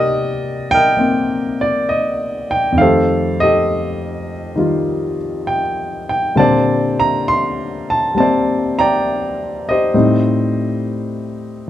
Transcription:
0, 0, Header, 1, 2, 480
1, 0, Start_track
1, 0, Tempo, 895522
1, 1491, Time_signature, 4, 2, 24, 8
1, 6268, End_track
2, 0, Start_track
2, 0, Title_t, "Grand piano"
2, 0, Program_c, 0, 0
2, 0, Control_c, 0, 64, 127
2, 0, Note_on_c, 0, 48, 49
2, 0, Note_on_c, 0, 58, 44
2, 0, Note_on_c, 0, 63, 57
2, 0, Note_on_c, 0, 67, 65
2, 0, Note_on_c, 0, 70, 66
2, 0, Note_on_c, 0, 74, 97
2, 0, Note_on_c, 0, 75, 110
2, 359, Note_off_c, 0, 75, 0
2, 381, Note_on_c, 0, 79, 117
2, 390, Note_off_c, 0, 70, 0
2, 398, Note_on_c, 0, 70, 76
2, 398, Note_on_c, 0, 75, 68
2, 511, Note_off_c, 0, 58, 0
2, 519, Note_on_c, 0, 58, 45
2, 528, Note_on_c, 0, 60, 46
2, 840, Note_off_c, 0, 79, 0
2, 847, Note_off_c, 0, 67, 0
2, 864, Note_off_c, 0, 74, 0
2, 864, Note_on_c, 0, 74, 84
2, 1002, Note_off_c, 0, 74, 0
2, 1005, Note_off_c, 0, 75, 0
2, 1013, Note_on_c, 0, 75, 80
2, 1328, Note_off_c, 0, 70, 0
2, 1344, Note_on_c, 0, 79, 90
2, 1352, Note_off_c, 0, 75, 0
2, 1459, Note_on_c, 0, 41, 47
2, 1474, Note_off_c, 0, 48, 0
2, 1480, Note_on_c, 0, 51, 42
2, 1485, Note_off_c, 0, 58, 0
2, 1489, Note_on_c, 0, 77, 90
2, 1490, Note_off_c, 0, 60, 0
2, 1496, Note_on_c, 0, 57, 43
2, 1497, Note_off_c, 0, 79, 0
2, 1498, Control_c, 0, 64, 0
2, 1504, Note_off_c, 0, 63, 0
2, 1507, Note_on_c, 0, 69, 68
2, 1508, Note_on_c, 0, 72, 68
2, 1515, Note_on_c, 0, 67, 55
2, 1592, Control_c, 0, 64, 127
2, 1799, Note_off_c, 0, 77, 0
2, 1824, Note_on_c, 0, 75, 94
2, 1831, Note_off_c, 0, 67, 0
2, 1831, Note_off_c, 0, 69, 0
2, 1839, Note_on_c, 0, 67, 63
2, 1839, Note_on_c, 0, 69, 53
2, 2431, Note_off_c, 0, 75, 0
2, 2434, Note_off_c, 0, 51, 0
2, 2438, Note_off_c, 0, 72, 0
2, 2442, Note_on_c, 0, 51, 48
2, 2450, Note_on_c, 0, 55, 45
2, 2459, Note_on_c, 0, 65, 46
2, 2769, Note_off_c, 0, 67, 0
2, 2769, Note_off_c, 0, 69, 0
2, 2933, Note_on_c, 0, 79, 81
2, 3007, Note_off_c, 0, 79, 0
2, 3266, Note_on_c, 0, 79, 77
2, 3395, Note_off_c, 0, 41, 0
2, 3399, Note_off_c, 0, 55, 0
2, 3406, Note_on_c, 0, 46, 53
2, 3407, Note_off_c, 0, 51, 0
2, 3407, Note_on_c, 0, 55, 49
2, 3409, Note_on_c, 0, 60, 47
2, 3412, Note_on_c, 0, 50, 52
2, 3414, Note_off_c, 0, 57, 0
2, 3415, Note_off_c, 0, 65, 0
2, 3416, Note_on_c, 0, 81, 90
2, 3417, Control_c, 0, 64, 0
2, 3418, Note_off_c, 0, 79, 0
2, 3427, Note_on_c, 0, 74, 73
2, 3428, Note_on_c, 0, 72, 72
2, 3503, Control_c, 0, 64, 127
2, 3722, Note_off_c, 0, 81, 0
2, 3750, Note_on_c, 0, 82, 98
2, 3783, Note_off_c, 0, 82, 0
2, 3903, Note_on_c, 0, 84, 99
2, 4206, Note_off_c, 0, 84, 0
2, 4235, Note_on_c, 0, 81, 89
2, 4358, Note_off_c, 0, 55, 0
2, 4358, Note_off_c, 0, 72, 0
2, 4358, Note_off_c, 0, 74, 0
2, 4366, Note_on_c, 0, 55, 47
2, 4372, Note_off_c, 0, 60, 0
2, 4372, Note_on_c, 0, 58, 39
2, 4375, Note_off_c, 0, 81, 0
2, 4380, Note_on_c, 0, 60, 53
2, 4383, Note_on_c, 0, 81, 86
2, 4397, Note_on_c, 0, 72, 64
2, 4397, Note_on_c, 0, 74, 61
2, 4686, Note_off_c, 0, 81, 0
2, 4709, Note_on_c, 0, 82, 102
2, 4713, Note_off_c, 0, 74, 0
2, 4718, Note_on_c, 0, 79, 70
2, 4721, Note_on_c, 0, 74, 75
2, 5192, Note_on_c, 0, 75, 92
2, 5195, Note_off_c, 0, 72, 0
2, 5200, Note_off_c, 0, 82, 0
2, 5203, Note_on_c, 0, 72, 57
2, 5204, Note_on_c, 0, 67, 58
2, 5318, Note_off_c, 0, 79, 0
2, 5320, Note_off_c, 0, 55, 0
2, 5320, Note_off_c, 0, 74, 0
2, 5324, Note_off_c, 0, 60, 0
2, 5327, Note_on_c, 0, 45, 58
2, 5328, Note_on_c, 0, 55, 50
2, 5329, Note_off_c, 0, 46, 0
2, 5332, Note_off_c, 0, 50, 0
2, 5332, Note_off_c, 0, 58, 0
2, 5332, Note_on_c, 0, 60, 53
2, 5335, Note_on_c, 0, 63, 63
2, 5337, Control_c, 0, 64, 0
2, 5427, Control_c, 0, 64, 127
2, 6268, Note_off_c, 0, 45, 0
2, 6268, Note_off_c, 0, 55, 0
2, 6268, Note_off_c, 0, 60, 0
2, 6268, Note_off_c, 0, 63, 0
2, 6268, Note_off_c, 0, 67, 0
2, 6268, Note_off_c, 0, 72, 0
2, 6268, Note_off_c, 0, 75, 0
2, 6268, End_track
0, 0, End_of_file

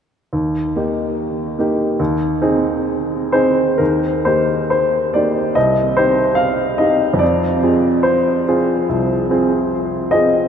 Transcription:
0, 0, Header, 1, 2, 480
1, 0, Start_track
1, 0, Key_signature, -3, "major"
1, 0, Tempo, 841515
1, 187, Time_signature, 4, 2, 24, 8
1, 1622, Tempo, 930233
1, 2582, Tempo, 848656
1, 3062, Tempo, 834492
1, 4982, Tempo, 804290
1, 5930, End_track
2, 0, Start_track
2, 0, Title_t, "Upright piano"
2, 0, Program_c, 0, 0
2, 186, Note_on_c, 0, 39, 41
2, 302, Control_c, 0, 64, 127
2, 424, Note_off_c, 0, 39, 0
2, 434, Note_on_c, 0, 58, 30
2, 437, Note_on_c, 0, 63, 30
2, 437, Note_on_c, 0, 67, 34
2, 884, Note_off_c, 0, 58, 0
2, 885, Note_off_c, 0, 63, 0
2, 886, Note_off_c, 0, 67, 0
2, 905, Note_on_c, 0, 58, 32
2, 911, Note_on_c, 0, 63, 34
2, 914, Note_on_c, 0, 67, 39
2, 1113, Note_off_c, 0, 58, 0
2, 1116, Note_off_c, 0, 63, 0
2, 1118, Note_off_c, 0, 67, 0
2, 1138, Note_on_c, 0, 39, 49
2, 1145, Control_c, 0, 64, 0
2, 1227, Control_c, 0, 64, 127
2, 1367, Note_off_c, 0, 39, 0
2, 1378, Note_on_c, 0, 60, 40
2, 1378, Note_on_c, 0, 63, 40
2, 1383, Note_on_c, 0, 68, 43
2, 1850, Note_off_c, 0, 60, 0
2, 1850, Note_off_c, 0, 63, 0
2, 1852, Note_off_c, 0, 68, 0
2, 1870, Note_on_c, 0, 72, 51
2, 1874, Note_on_c, 0, 60, 34
2, 1876, Note_on_c, 0, 68, 35
2, 1877, Note_on_c, 0, 63, 36
2, 2097, Note_off_c, 0, 60, 0
2, 2098, Note_off_c, 0, 63, 0
2, 2098, Note_off_c, 0, 68, 0
2, 2104, Note_on_c, 0, 70, 48
2, 2112, Note_on_c, 0, 39, 38
2, 2116, Note_off_c, 0, 72, 0
2, 2124, Control_c, 0, 64, 0
2, 2225, Control_c, 0, 64, 127
2, 2342, Note_off_c, 0, 39, 0
2, 2345, Note_off_c, 0, 70, 0
2, 2348, Note_on_c, 0, 72, 48
2, 2353, Note_on_c, 0, 58, 29
2, 2355, Note_on_c, 0, 63, 30
2, 2360, Note_on_c, 0, 67, 33
2, 2573, Note_off_c, 0, 72, 0
2, 2581, Note_on_c, 0, 72, 52
2, 2806, Note_off_c, 0, 58, 0
2, 2807, Note_off_c, 0, 63, 0
2, 2810, Note_off_c, 0, 67, 0
2, 2826, Note_off_c, 0, 72, 0
2, 2827, Note_on_c, 0, 74, 45
2, 2833, Note_on_c, 0, 58, 29
2, 2834, Note_on_c, 0, 63, 30
2, 2837, Note_on_c, 0, 67, 35
2, 3044, Note_off_c, 0, 58, 0
2, 3044, Note_off_c, 0, 63, 0
2, 3045, Note_off_c, 0, 67, 0
2, 3062, Note_on_c, 0, 75, 57
2, 3063, Note_off_c, 0, 74, 0
2, 3068, Note_on_c, 0, 36, 41
2, 3073, Control_c, 0, 64, 0
2, 3165, Control_c, 0, 64, 127
2, 3296, Note_off_c, 0, 36, 0
2, 3300, Note_on_c, 0, 72, 58
2, 3301, Note_off_c, 0, 75, 0
2, 3302, Note_on_c, 0, 60, 31
2, 3304, Note_on_c, 0, 63, 31
2, 3309, Note_on_c, 0, 67, 37
2, 3521, Note_on_c, 0, 77, 65
2, 3537, Note_off_c, 0, 72, 0
2, 3752, Note_off_c, 0, 60, 0
2, 3753, Note_off_c, 0, 63, 0
2, 3756, Note_off_c, 0, 67, 0
2, 3767, Note_off_c, 0, 77, 0
2, 3768, Note_on_c, 0, 75, 47
2, 3774, Note_on_c, 0, 63, 31
2, 3775, Note_on_c, 0, 60, 29
2, 3782, Note_on_c, 0, 67, 32
2, 3972, Note_on_c, 0, 41, 43
2, 3992, Note_off_c, 0, 60, 0
2, 3992, Note_off_c, 0, 63, 0
2, 3996, Note_off_c, 0, 67, 0
2, 4004, Note_on_c, 0, 74, 53
2, 4012, Note_off_c, 0, 75, 0
2, 4025, Control_c, 0, 64, 0
2, 4129, Control_c, 0, 64, 127
2, 4224, Note_off_c, 0, 41, 0
2, 4256, Note_on_c, 0, 60, 31
2, 4259, Note_on_c, 0, 65, 31
2, 4259, Note_on_c, 0, 68, 34
2, 4487, Note_on_c, 0, 72, 54
2, 4488, Note_off_c, 0, 74, 0
2, 4718, Note_off_c, 0, 60, 0
2, 4719, Note_off_c, 0, 65, 0
2, 4719, Note_off_c, 0, 68, 0
2, 4746, Note_on_c, 0, 60, 34
2, 4748, Note_on_c, 0, 65, 36
2, 4750, Note_on_c, 0, 68, 39
2, 4963, Note_off_c, 0, 60, 0
2, 4964, Note_off_c, 0, 65, 0
2, 4965, Note_off_c, 0, 68, 0
2, 4983, Note_on_c, 0, 36, 37
2, 5220, Note_off_c, 0, 36, 0
2, 5229, Note_on_c, 0, 65, 36
2, 5231, Note_on_c, 0, 60, 38
2, 5233, Note_on_c, 0, 68, 44
2, 5465, Note_off_c, 0, 72, 0
2, 5683, Note_off_c, 0, 65, 0
2, 5684, Note_off_c, 0, 60, 0
2, 5685, Note_off_c, 0, 68, 0
2, 5710, Note_on_c, 0, 75, 55
2, 5714, Note_on_c, 0, 60, 35
2, 5720, Note_on_c, 0, 65, 34
2, 5721, Note_on_c, 0, 68, 36
2, 5924, Note_off_c, 0, 60, 0
2, 5927, Note_off_c, 0, 65, 0
2, 5928, Note_off_c, 0, 68, 0
2, 5930, Note_off_c, 0, 75, 0
2, 5930, End_track
0, 0, End_of_file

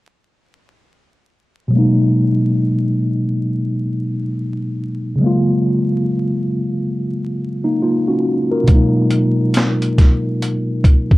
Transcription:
0, 0, Header, 1, 3, 480
1, 0, Start_track
1, 0, Tempo, 869565
1, 951, Time_signature, 4, 2, 24, 8
1, 6171, End_track
2, 0, Start_track
2, 0, Title_t, "Tine electric piano"
2, 0, Program_c, 0, 4
2, 927, Note_on_c, 0, 47, 69
2, 941, Note_on_c, 0, 54, 64
2, 955, Note_on_c, 0, 56, 55
2, 970, Note_on_c, 0, 58, 63
2, 984, Note_on_c, 0, 63, 72
2, 1039, Control_c, 0, 64, 127
2, 2837, Note_off_c, 0, 47, 0
2, 2844, Note_off_c, 0, 54, 0
2, 2846, Note_on_c, 0, 49, 68
2, 2851, Note_off_c, 0, 56, 0
2, 2858, Note_off_c, 0, 58, 0
2, 2862, Note_on_c, 0, 54, 58
2, 2865, Note_off_c, 0, 63, 0
2, 2876, Note_on_c, 0, 56, 61
2, 2878, Control_c, 0, 64, 0
2, 2891, Note_on_c, 0, 58, 64
2, 2905, Note_on_c, 0, 65, 71
2, 2987, Control_c, 0, 64, 127
2, 4059, Note_off_c, 0, 58, 0
2, 4066, Note_off_c, 0, 65, 0
2, 4219, Note_on_c, 0, 63, 58
2, 4223, Note_on_c, 0, 58, 50
2, 4309, Note_off_c, 0, 63, 0
2, 4311, Note_off_c, 0, 58, 0
2, 4319, Note_on_c, 0, 65, 61
2, 4324, Note_on_c, 0, 58, 56
2, 4450, Note_off_c, 0, 65, 0
2, 4452, Note_off_c, 0, 58, 0
2, 4459, Note_on_c, 0, 66, 56
2, 4462, Note_on_c, 0, 61, 48
2, 4684, Note_off_c, 0, 66, 0
2, 4685, Note_off_c, 0, 61, 0
2, 4700, Note_on_c, 0, 70, 53
2, 4703, Note_on_c, 0, 65, 45
2, 4756, Note_off_c, 0, 49, 0
2, 4765, Note_off_c, 0, 54, 0
2, 4767, Note_on_c, 0, 47, 64
2, 4771, Note_off_c, 0, 56, 0
2, 4783, Note_on_c, 0, 54, 62
2, 4797, Note_on_c, 0, 56, 57
2, 4799, Control_c, 0, 64, 0
2, 4811, Note_on_c, 0, 58, 57
2, 4825, Note_on_c, 0, 63, 73
2, 4882, Control_c, 0, 64, 127
2, 4924, Note_off_c, 0, 70, 0
2, 4926, Note_off_c, 0, 65, 0
2, 6171, Note_off_c, 0, 47, 0
2, 6171, Note_off_c, 0, 54, 0
2, 6171, Note_off_c, 0, 56, 0
2, 6171, Note_off_c, 0, 58, 0
2, 6171, Note_off_c, 0, 63, 0
2, 6171, End_track
3, 0, Start_track
3, 0, Title_t, "Drums"
3, 4788, Note_on_c, 9, 42, 64
3, 4791, Note_on_c, 9, 36, 97
3, 4844, Note_off_c, 9, 42, 0
3, 4846, Note_off_c, 9, 36, 0
3, 5026, Note_on_c, 9, 42, 54
3, 5081, Note_off_c, 9, 42, 0
3, 5266, Note_on_c, 9, 42, 90
3, 5283, Note_on_c, 9, 38, 106
3, 5322, Note_off_c, 9, 42, 0
3, 5338, Note_off_c, 9, 38, 0
3, 5421, Note_on_c, 9, 42, 41
3, 5476, Note_off_c, 9, 42, 0
3, 5510, Note_on_c, 9, 36, 81
3, 5511, Note_on_c, 9, 42, 65
3, 5521, Note_on_c, 9, 38, 33
3, 5566, Note_off_c, 9, 36, 0
3, 5567, Note_off_c, 9, 42, 0
3, 5576, Note_off_c, 9, 38, 0
3, 5753, Note_on_c, 9, 42, 83
3, 5808, Note_off_c, 9, 42, 0
3, 5984, Note_on_c, 9, 36, 86
3, 5987, Note_on_c, 9, 42, 59
3, 6039, Note_off_c, 9, 36, 0
3, 6043, Note_off_c, 9, 42, 0
3, 6134, Note_on_c, 9, 36, 84
3, 6171, Note_off_c, 9, 36, 0
3, 6171, End_track
0, 0, End_of_file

